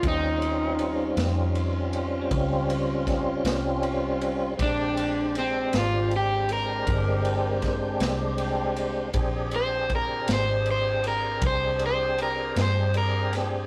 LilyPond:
<<
  \new Staff \with { instrumentName = "Overdriven electric guitar" } { \time 12/8 \key bes \mixolydian \tempo 4. = 53 ees'2. r2. | d'4 c'8 f'8 g'8 bes'2 r4. | r8 c''8 bes'8 c''8 c''8 bes'8 c''8 c''8 bes'8 c''8 bes'8 r8 | }
  \new Staff \with { instrumentName = "Tonewheel organ" } { \time 12/8 \key bes \mixolydian <g c' des' f'>1. | <aes c' d' g'>1. | <c' d' g' aes'>1. | }
  \new Staff \with { instrumentName = "Fingered electric bass" } { \clef bass \time 12/8 \key bes \mixolydian ees,4. f,4. des,4. c,4. | bes,,4. aes,,4. g,,4. c,4. | bes,,4. aes,,4. c,4. g,4. | }
  \new DrumStaff \with { instrumentName = "Drums" } \drummode { \time 12/8 <bd cymr>8 cymr8 cymr8 <cymr sn>8 cymr8 cymr8 <bd cymr>8 cymr8 <bd cymr sn>8 <cymr sn>8 cymr8 cymr8 | <bd cymr>8 cymr8 cymr8 <cymr sn>8 cymr8 cymr8 <bd cymr>8 cymr8 <bd cymr sn>8 <cymr sn>8 cymr8 cymr8 | <bd cymr>8 cymr8 <bd cymr>8 <cymr sn>8 cymr8 cymr8 <bd cymr>8 cymr8 cymr8 <cymr sn>8 cymr8 <cymr sn>8 | }
>>